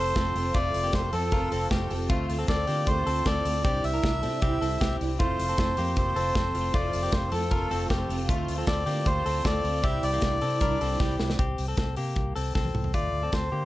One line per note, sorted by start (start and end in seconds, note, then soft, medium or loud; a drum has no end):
0.00 0.13 F1 medium
0.00 0.54 F3 medium
0.00 0.15 A3 medium
0.00 0.16 C4 medium
0.00 0.17 F4 medium
0.00 0.15 A4 medium
0.00 0.17 A4 medium
0.00 0.57 C5 loud
0.15 0.32 F1 loud
0.15 0.35 A3 medium
0.15 0.35 C4 medium
0.15 0.53 C4 medium
0.15 0.35 F4 medium
0.15 0.53 A4 medium
0.15 0.34 A4 medium
0.15 kick loud
0.15 snare loud
0.15 closed hi-hat medium
0.35 0.51 F1 loud
0.35 0.54 C4 medium
0.35 0.54 F4 medium
0.35 0.55 A4 medium
0.35 open hi-hat medium
0.54 0.71 F1 loud
0.54 1.32 F3 medium
0.54 0.93 A3 medium
0.54 0.82 A3 medium
0.54 0.94 C4 medium
0.54 0.82 F4 medium
0.54 0.95 F4 medium
0.54 0.95 A4 medium
0.54 0.95 D5 loud
0.54 kick loud
0.54 closed hi-hat medium
0.74 0.90 F1 medium
0.74 open hi-hat medium
0.83 1.11 A#3 medium
0.83 1.11 G4 medium
0.93 1.09 F1 medium
0.93 1.13 A3 medium
0.93 1.13 C4 medium
0.93 1.13 F4 medium
0.93 1.11 A4 medium
0.93 1.14 C5 medium
0.93 kick loud
0.93 snare loud
0.93 closed hi-hat medium
1.13 1.29 F2 medium
1.13 1.33 C4 medium
1.13 1.32 C4 soft
1.13 1.32 F4 soft
1.13 1.32 A4 medium
1.13 1.67 A4 medium
1.13 open hi-hat medium
1.32 1.48 F1 medium
1.32 1.71 F3 medium
1.32 1.68 A3 medium
1.32 1.71 C4 medium
1.32 1.52 F4 medium
1.32 1.70 F4 medium
1.32 1.71 A4 medium
1.32 1.51 A#4 medium
1.32 kick loud
1.32 closed hi-hat medium
1.52 1.68 F1 loud
1.52 1.71 C4 medium
1.52 1.71 A4 medium
1.52 open hi-hat medium
1.70 1.87 F1 medium
1.70 1.90 A3 medium
1.70 1.90 C4 medium
1.70 2.08 C4 medium
1.70 1.89 F4 medium
1.70 2.07 G4 medium
1.70 1.88 A4 medium
1.70 kick loud
1.70 snare loud
1.70 closed hi-hat medium
1.90 2.11 F1 medium
1.90 2.09 C4 medium
1.90 2.09 F4 soft
1.90 2.09 A4 medium
1.90 open hi-hat medium
2.09 2.26 D2 medium
2.09 2.47 D3 medium
2.09 2.47 A3 medium
2.09 2.37 A3 medium
2.09 2.49 C4 medium
2.09 2.37 F4 medium
2.09 2.49 F4 medium
2.09 kick loud
2.09 closed hi-hat medium
2.29 2.45 D2 medium
2.29 open hi-hat medium
2.39 2.48 C4 medium
2.39 2.47 A4 medium
2.47 2.64 D2 medium
2.47 2.67 D3 medium
2.47 2.68 A3 medium
2.47 2.68 C4 medium
2.47 2.67 C4 medium
2.47 2.66 F4 medium
2.47 2.67 A4 medium
2.47 2.88 D5 loud
2.47 kick loud
2.47 snare loud
2.47 closed hi-hat medium
2.67 2.84 D3 medium
2.67 2.87 A3 soft
2.67 3.04 A#3 medium
2.67 2.87 C4 soft
2.67 2.87 F4 soft
2.67 3.04 G4 medium
2.67 open hi-hat medium
2.87 3.03 D2 medium
2.87 3.24 D3 medium
2.87 3.25 A3 medium
2.87 3.27 C4 medium
2.87 3.27 F4 medium
2.87 3.27 C5 loud
2.87 kick loud
2.87 closed hi-hat medium
3.06 3.23 D2 medium
3.06 3.26 C4 medium
3.06 3.25 A4 medium
3.06 open hi-hat medium
3.26 3.42 D2 medium
3.26 3.45 D3 medium
3.26 3.46 A3 medium
3.26 3.63 C4 medium
3.26 3.45 C4 medium
3.26 3.44 F4 medium
3.26 3.62 A4 medium
3.26 3.63 D5 loud
3.26 kick loud
3.26 snare loud
3.26 closed hi-hat medium
3.45 3.61 D2 medium
3.45 3.65 A3 soft
3.45 3.65 C4 soft
3.45 3.65 F4 soft
3.45 open hi-hat medium
3.64 3.81 C2 loud
3.64 4.03 C3 medium
3.64 4.02 E3 medium
3.64 4.03 G3 medium
3.64 3.92 C4 medium
3.64 4.04 D4 medium
3.64 4.04 E4 medium
3.64 3.92 G4 medium
3.64 3.85 D5 loud
3.64 kick loud
3.64 closed hi-hat medium
3.84 4.00 C2 medium
3.84 4.96 E5 loud
3.84 open hi-hat medium
3.94 4.21 D4 medium
3.94 4.21 A#4 medium
4.03 4.25 C2 medium
4.03 4.23 G3 medium
4.03 4.23 D4 medium
4.03 4.22 E4 medium
4.03 kick loud
4.03 snare medium
4.03 closed hi-hat medium
4.23 4.39 C3 medium
4.23 4.42 G3 soft
4.23 4.42 C4 medium
4.23 4.42 D4 soft
4.23 4.42 E4 medium
4.23 4.42 A4 medium
4.23 open hi-hat medium
4.42 4.58 C2 loud
4.42 4.81 C3 medium
4.42 4.80 E3 medium
4.42 4.81 G3 medium
4.42 4.61 C4 medium
4.42 4.82 D4 medium
4.42 4.82 E4 loud
4.42 4.61 G4 medium
4.42 kick loud
4.42 closed hi-hat medium
4.61 4.77 C2 medium
4.61 4.80 C4 medium
4.61 4.80 A4 medium
4.61 open hi-hat medium
4.81 4.97 C2 medium
4.81 5.00 E3 medium
4.81 5.01 G3 medium
4.81 5.18 C4 medium
4.81 5.01 D4 medium
4.81 4.99 E4 medium
4.81 5.17 G4 medium
4.81 kick loud
4.81 snare loud
4.81 closed hi-hat medium
5.01 5.16 C2 medium
5.01 5.20 G3 soft
5.01 5.20 D4 soft
5.01 5.20 E4 medium
5.01 open hi-hat medium
5.19 5.36 F1 medium
5.19 5.59 F3 medium
5.19 5.47 A3 medium
5.19 5.59 A3 medium
5.19 5.60 C4 medium
5.19 5.47 F4 medium
5.19 5.61 F4 medium
5.19 5.96 C5 loud
5.19 kick loud
5.19 closed hi-hat medium
5.39 5.55 F1 medium
5.39 open hi-hat medium
5.49 5.58 C4 medium
5.49 5.58 A4 medium
5.58 5.74 F1 medium
5.58 5.78 F3 medium
5.58 5.78 A3 medium
5.58 5.78 C4 medium
5.58 5.77 C4 medium
5.58 5.76 F4 medium
5.58 5.78 A4 medium
5.58 kick loud
5.58 snare loud
5.58 closed hi-hat medium
5.77 5.94 F2 medium
5.77 5.96 A3 soft
5.77 6.15 A#3 medium
5.77 5.96 C4 medium
5.77 5.97 F4 medium
5.77 6.14 G4 medium
5.77 open hi-hat medium
5.96 6.13 F1 medium
5.96 6.35 F3 medium
5.96 6.36 A3 medium
5.96 6.37 C4 medium
5.96 6.37 F4 medium
5.96 6.77 C5 loud
5.96 kick medium
5.96 closed hi-hat medium
6.16 6.32 F1 medium
6.16 6.35 C4 medium
6.16 6.34 A4 medium
6.16 open hi-hat medium
6.35 6.51 F1 loud
6.35 6.55 F3 medium
6.35 6.55 A3 medium
6.35 6.72 C4 medium
6.35 6.54 C4 medium
6.35 6.53 F4 medium
6.35 6.72 A4 medium
6.35 kick loud
6.35 snare loud
6.35 closed hi-hat medium
6.54 6.71 F1 loud
6.54 6.73 A3 soft
6.54 6.74 C4 medium
6.54 6.74 F4 medium
6.54 open hi-hat medium
6.74 6.90 F1 medium
6.74 7.12 F3 medium
6.74 7.13 A3 medium
6.74 7.02 A3 medium
6.74 7.14 C4 medium
6.74 7.02 F4 medium
6.74 7.15 F4 medium
6.74 7.14 D5 loud
6.74 kick loud
6.74 closed hi-hat medium
6.93 7.10 F1 medium
6.93 open hi-hat medium
7.03 7.31 A#3 medium
7.03 7.30 G4 medium
7.12 7.29 F1 medium
7.12 7.32 F3 medium
7.12 7.33 A3 medium
7.12 7.32 C4 medium
7.12 7.31 F4 medium
7.12 7.33 C5 medium
7.12 kick loud
7.12 snare loud
7.12 closed hi-hat medium
7.32 7.48 F2 medium
7.32 7.50 A3 soft
7.32 7.52 C4 medium
7.32 7.51 C4 soft
7.32 7.51 F4 soft
7.32 7.51 A4 medium
7.32 7.87 A4 medium
7.32 open hi-hat medium
7.51 7.67 F1 medium
7.51 7.88 F3 medium
7.51 7.89 A3 medium
7.51 7.91 C4 medium
7.51 7.71 F4 medium
7.51 7.91 F4 medium
7.51 7.70 A#4 medium
7.51 kick loud
7.51 closed hi-hat medium
7.71 7.87 F1 loud
7.71 7.90 C4 medium
7.71 7.90 A4 medium
7.71 open hi-hat medium
7.89 8.06 F1 medium
7.89 8.09 F3 medium
7.89 8.10 A3 medium
7.89 8.27 C4 medium
7.89 8.10 C4 medium
7.89 8.08 F4 medium
7.89 8.27 G4 medium
7.89 kick loud
7.89 snare loud
7.89 closed hi-hat medium
8.09 8.30 F1 medium
8.09 8.28 A3 medium
8.09 8.28 C4 medium
8.09 8.29 F4 medium
8.09 open hi-hat medium
8.28 8.45 D2 loud
8.28 8.66 D3 medium
8.28 8.66 A3 medium
8.28 8.57 A3 medium
8.28 8.68 C4 loud
8.28 8.56 F4 medium
8.28 8.68 F4 loud
8.28 kick loud
8.28 closed hi-hat medium
8.48 8.64 D2 medium
8.48 open hi-hat medium
8.58 8.67 C4 medium
8.58 8.66 A4 medium
8.67 8.84 D2 medium
8.67 8.87 D3 medium
8.67 8.87 A3 medium
8.67 8.86 C4 medium
8.67 8.87 C4 medium
8.67 8.85 F4 medium
8.67 8.86 A4 medium
8.67 9.08 D5 medium
8.67 kick loud
8.67 snare loud
8.67 closed hi-hat medium
8.86 9.03 D3 medium
8.86 9.05 A3 soft
8.86 9.24 A#3 medium
8.86 9.05 C4 soft
8.86 9.06 F4 medium
8.86 9.23 G4 medium
8.86 open hi-hat medium
9.05 9.22 D2 medium
9.05 9.44 D3 medium
9.05 9.44 A3 medium
9.05 9.45 C4 medium
9.05 9.46 F4 medium
9.05 9.47 C5 loud
9.05 kick loud
9.05 closed hi-hat medium
9.26 9.42 D2 medium
9.26 9.44 C4 medium
9.26 9.43 A4 medium
9.26 open hi-hat medium
9.44 9.61 D2 loud
9.44 9.64 D3 medium
9.44 9.65 A3 medium
9.44 9.82 C4 medium
9.44 9.64 C4 medium
9.44 9.63 F4 medium
9.44 9.81 A4 medium
9.44 9.86 D5 loud
9.44 kick loud
9.44 snare loud
9.44 closed hi-hat medium
9.64 9.80 D2 medium
9.64 9.84 A3 soft
9.64 9.84 C4 soft
9.64 9.84 F4 soft
9.64 open hi-hat medium
9.83 10.00 C2 loud
9.83 10.23 C3 medium
9.83 10.21 E3 medium
9.83 10.22 G3 medium
9.83 10.11 C4 medium
9.83 10.23 D4 medium
9.83 10.24 E4 medium
9.83 10.11 G4 medium
9.83 10.04 E5 loud
9.83 kick loud
9.83 closed hi-hat medium
10.03 10.19 C2 medium
10.03 11.16 D5 loud
10.03 open hi-hat medium
10.13 10.41 A#3 medium
10.13 10.40 G4 medium
10.22 10.38 C2 loud
10.22 10.60 E3 medium
10.22 10.61 G3 medium
10.22 10.61 D4 medium
10.22 10.61 E4 medium
10.22 kick loud
10.22 snare medium
10.22 closed hi-hat medium
10.41 10.62 C3 medium
10.41 10.62 C4 medium
10.41 10.61 A4 medium
10.41 open hi-hat medium
10.60 10.77 C2 medium
10.60 11.00 C3 medium
10.60 10.98 E3 medium
10.60 10.98 G3 medium
10.60 11.00 D4 loud
10.60 10.81 D4 medium
10.60 11.00 E4 medium
10.60 10.81 A#4 medium
10.60 kick loud
10.60 closed hi-hat medium
10.81 10.97 C2 medium
10.81 11.00 C4 medium
10.81 11.00 A4 medium
10.81 open hi-hat medium
10.99 11.16 C2 medium
10.99 11.19 E3 medium
10.99 11.19 G3 medium
10.99 11.37 C4 medium
10.99 11.18 D4 medium
10.99 11.17 E4 medium
10.99 11.37 G4 medium
10.99 kick loud
10.99 snare medium
11.18 11.36 C2 medium
11.18 11.40 G3 soft
11.18 11.39 D4 medium
11.18 11.38 E4 medium
11.18 snare medium
11.30 snare medium
11.39 11.55 C2 medium
11.39 11.67 C4 medium
11.39 11.66 G4 medium
11.39 kick loud
11.39 closed hi-hat medium
11.58 11.74 C2 medium
11.58 open hi-hat medium
11.68 11.78 C4 soft
11.68 11.77 A4 medium
11.77 11.94 C2 medium
11.77 11.98 C4 medium
11.77 11.97 A4 medium
11.77 kick loud
11.77 snare medium
11.77 closed hi-hat medium
11.96 12.13 C3 medium
11.96 12.34 A#3 soft
11.96 12.34 G4 medium
11.96 open hi-hat medium
12.16 12.32 C2 medium
12.16 kick medium
12.16 closed hi-hat medium
12.36 12.52 C2 medium
12.36 12.55 C4 medium
12.36 12.54 A4 medium
12.36 open hi-hat medium
12.55 12.71 C2 medium
12.55 12.92 C4 medium
12.55 12.92 A4 medium
12.55 kick loud
12.55 snare soft
12.65 high tom medium
12.74 12.90 C2 medium
12.74 mid tom medium
12.84 floor tom medium
12.94 13.10 D2 medium
12.94 13.22 A3 medium
12.94 13.22 F4 medium
12.94 13.34 D5 medium
12.94 kick loud
12.94 closed hi-hat medium
13.13 13.29 D2 medium
13.23 13.32 C4 soft
13.23 13.31 A4 medium
13.32 13.49 D2 medium
13.32 13.52 C4 medium
13.32 13.52 A4 medium
13.32 13.65 C5 medium
13.32 kick loud
13.32 snare medium
13.32 closed hi-hat medium
13.52 13.65 D3 medium
13.52 13.65 A#3 medium
13.52 13.65 G4 medium